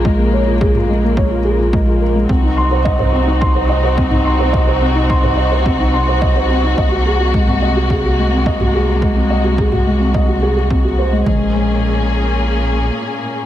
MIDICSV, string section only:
0, 0, Header, 1, 2, 480
1, 0, Start_track
1, 0, Tempo, 560748
1, 42, Time_signature, 4, 2, 24, 8
1, 11520, End_track
2, 0, Start_track
2, 0, Title_t, "String section"
2, 0, Program_c, 0, 48
2, 0, Note_on_c, 0, 49, 65
2, 0, Note_on_c, 0, 56, 59
2, 0, Note_on_c, 0, 58, 71
2, 1928, Note_off_c, 0, 49, 0
2, 1929, Note_off_c, 0, 56, 0
2, 1929, Note_off_c, 0, 58, 0
2, 1961, Note_on_c, 0, 48, 60
2, 1961, Note_on_c, 0, 60, 57
2, 1961, Note_on_c, 0, 63, 57
2, 1963, Note_on_c, 0, 66, 70
2, 5767, Note_off_c, 0, 60, 0
2, 5767, Note_off_c, 0, 63, 0
2, 5801, Note_on_c, 0, 58, 59
2, 5804, Note_on_c, 0, 56, 58
2, 9607, Note_off_c, 0, 48, 0
2, 9607, Note_off_c, 0, 58, 0
2, 9608, Note_off_c, 0, 66, 0
2, 9609, Note_off_c, 0, 56, 0
2, 9640, Note_on_c, 0, 46, 56
2, 9641, Note_on_c, 0, 58, 54
2, 9642, Note_on_c, 0, 61, 56
2, 9643, Note_on_c, 0, 68, 63
2, 11520, Note_off_c, 0, 46, 0
2, 11520, Note_off_c, 0, 58, 0
2, 11520, Note_off_c, 0, 61, 0
2, 11520, Note_off_c, 0, 68, 0
2, 11520, End_track
0, 0, End_of_file